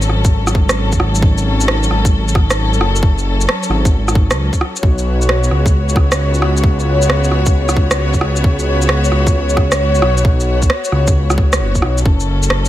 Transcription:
Already playing: string section F#3 C#4 A4
0.02 shaker
0.08 detuned saw bass G#1, cross-stick
0.25 kick, shaker
0.47 cross-stick, shaker
0.55 kick
0.69 cross-stick, shaker
0.92 kick, shaker
1.00 cross-stick
1.15 shaker
1.22 kick
1.38 shaker
1.61 shaker
1.68 cross-stick
1.83 shaker
1.90 detuned saw bass G#1, cross-stick
2.05 kick, shaker
2.28 shaker
2.35 kick, cross-stick
2.50 cross-stick, shaker
2.74 shaker
2.80 detuned saw bass F#1, cross-stick
2.96 shaker
3.03 kick
3.18 shaker
3.41 shaker
3.49 cross-stick
3.63 shaker
3.69 detuned saw bass G#1, cross-stick
3.85 kick, shaker
4.08 cross-stick, shaker
4.15 kick
4.30 detuned saw bass C#2, cross-stick, shaker
4.53 kick, shaker
4.61 cross-stick
4.76 shaker
4.82 detuned saw bass B1, string section B3 F#4 C#5, kick
4.98 shaker
5.22 shaker
5.29 cross-stick
5.44 shaker
5.51 detuned saw bass C#2, cross-stick
5.66 kick, shaker
5.89 shaker
5.96 kick, cross-stick
6.12 cross-stick, shaker
6.34 shaker
6.42 cross-stick
6.57 shaker
6.64 kick
6.80 shaker
7.02 shaker
7.10 cross-stick
7.24 shaker
7.31 detuned saw bass C#2, cross-stick
7.46 kick, shaker
7.69 cross-stick, shaker
7.77 kick
7.91 cross-stick, shaker
8.14 kick, shaker
8.21 cross-stick
8.36 shaker
8.44 kick
8.59 shaker
8.82 shaker
8.89 cross-stick
9.04 shaker
9.12 detuned saw bass C#2, cross-stick
9.27 kick, shaker
9.49 shaker
9.57 kick, cross-stick
9.72 cross-stick, shaker
9.95 shaker
10.02 detuned saw bass B1, cross-stick
10.17 shaker
10.25 kick
10.40 shaker
10.62 kick, shaker
10.70 cross-stick
10.85 shaker
10.92 detuned saw bass C#2, cross-stick
11.07 kick, shaker
11.30 cross-stick, shaker
11.38 kick
11.53 cross-stick, shaker
11.59 detuned saw bass F#1
11.75 kick, shaker
11.82 detuned saw bass B1, cross-stick
11.98 shaker
12.05 detuned saw bass F#1, string section F#3 C#4 A4, kick
12.20 shaker
12.43 shaker
12.50 cross-stick
12.65 shaker

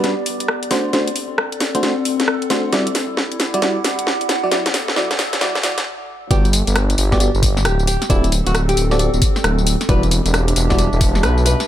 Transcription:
Already playing: ambient pad B3 G4 D5 F#5
0.04 fm electric piano G3 D4 F#4 B4, snare, closed hi-hat
0.26 open hi-hat
0.40 closed hi-hat
0.48 cross-stick
0.63 closed hi-hat
0.71 fm electric piano A3 D4 F#4 C5, ambient pad C4, snare, open hi-hat
0.89 ambient pad A4
0.93 fm electric piano A3 D4 F#4 C5, snare, closed hi-hat
1.08 closed hi-hat
1.16 open hi-hat
1.38 cross-stick
1.52 closed hi-hat
1.60 snare, open hi-hat
1.75 fm electric piano A3 D4 F#4 C5, closed hi-hat
1.83 fm electric piano A3 D4 F#4 C5, snare, closed hi-hat
2.05 open hi-hat
2.20 snare, closed hi-hat
2.28 cross-stick
2.42 closed hi-hat
2.50 fm electric piano A3 D4 F#4 C5, snare, open hi-hat
2.73 fm electric piano G3 E4 F#4 D5, ambient pad E4, snare, closed hi-hat
2.87 closed hi-hat
2.95 snare, open hi-hat
3.02 ambient pad G4
3.17 snare
3.32 closed hi-hat
3.40 snare, open hi-hat
3.44 ambient pad F#5
3.54 fm electric piano G3 E4 F#4 D5, closed hi-hat
3.62 fm electric piano G3 E4 F#4 D5, snare, closed hi-hat
3.84 snare, open hi-hat
3.99 closed hi-hat
4.07 snare
4.21 closed hi-hat
4.29 ambient pad B3, snare, open hi-hat
4.43 fm electric piano F#3 E4 F#4 D5
4.52 fm electric piano F#3 E4 F#4 D5, snare, closed hi-hat
4.58 ambient pad A4
4.66 snare, closed hi-hat
4.74 snare, open hi-hat
4.88 snare
4.96 fm electric piano F#3 E4 F#4 D5, snare
5.11 snare, closed hi-hat
5.19 snare, open hi-hat
5.33 snare, closed hi-hat
5.41 fm electric piano F#3 E4 F#4 D5, snare, closed hi-hat
5.55 snare
5.63 fm electric piano F#3 E4 F#4 D5, snare, open hi-hat
5.78 snare, closed hi-hat
6.31 detuned saw bass G1, fm electric piano B3 F#4 G4 D5, nylon-string guitar G4, kick, closed hi-hat, tambourine
6.45 ambient pad G4, closed hi-hat, tambourine
6.53 open hi-hat, tambourine
6.67 detuned saw bass G1, closed hi-hat, tambourine
6.76 cross-stick, closed hi-hat, tambourine
6.90 closed hi-hat, tambourine
6.98 detuned saw bass G1, open hi-hat, tambourine
7.12 fm electric piano B3 F#4 G4 D5, kick, snare, tambourine
7.20 fm electric piano B3 F#4 G4 D5, closed hi-hat, tambourine
7.35 detuned saw bass G1, tambourine
7.43 kick, open hi-hat, tambourine
7.57 snare, tambourine
7.65 detuned saw bass D1, nylon-string guitar G4, cross-stick, closed hi-hat, tambourine
7.79 tambourine
7.87 ambient pad C4, nylon-string guitar G4, open hi-hat, tambourine
7.94 ambient pad A4
8.02 snare, closed hi-hat, tambourine
8.10 detuned saw bass D1, fm electric piano C4 F#4 A4 D5, nylon-string guitar E4, kick, closed hi-hat, tambourine
8.24 closed hi-hat, tambourine
8.32 open hi-hat, tambourine
8.47 detuned saw bass D1, nylon-string guitar F#4, closed hi-hat, tambourine
8.55 cross-stick, closed hi-hat, tambourine
8.69 nylon-string guitar G4, closed hi-hat, tambourine
8.77 detuned saw bass D1, open hi-hat, tambourine
8.91 fm electric piano C4 F#4 A4 D5, snare, tambourine
8.99 fm electric piano C4 F#4 A4 D5, closed hi-hat, tambourine
9.14 detuned saw bass D1, tambourine
9.22 kick, open hi-hat, tambourine
9.36 snare, tambourine
9.44 detuned saw bass D1, cross-stick, closed hi-hat, tambourine
9.58 tambourine
9.67 open hi-hat, tambourine
9.81 snare, closed hi-hat, tambourine
9.89 detuned saw bass E1, fm electric piano G3 E4 F#4 D5, ambient pad D4, nylon-string guitar B4, kick, closed hi-hat, tambourine
9.96 ambient pad G4
10.03 closed hi-hat, tambourine
10.11 open hi-hat, tambourine
10.25 detuned saw bass E1, closed hi-hat, tambourine
10.34 cross-stick, closed hi-hat, tambourine
10.42 ambient pad E5
10.48 closed hi-hat, tambourine
10.56 detuned saw bass E1, open hi-hat, tambourine
10.70 fm electric piano G3 E4 F#4 D5, kick, snare, tambourine
10.78 fm electric piano G3 E4 F#4 D5, closed hi-hat, tambourine
10.93 detuned saw bass E1, tambourine
11.01 kick, open hi-hat, tambourine
11.15 snare, tambourine
11.23 detuned saw bass B1, nylon-string guitar B4, cross-stick, closed hi-hat, tambourine
11.38 tambourine
11.45 ambient pad B3, nylon-string guitar B4, open hi-hat, tambourine
11.60 snare, closed hi-hat, tambourine

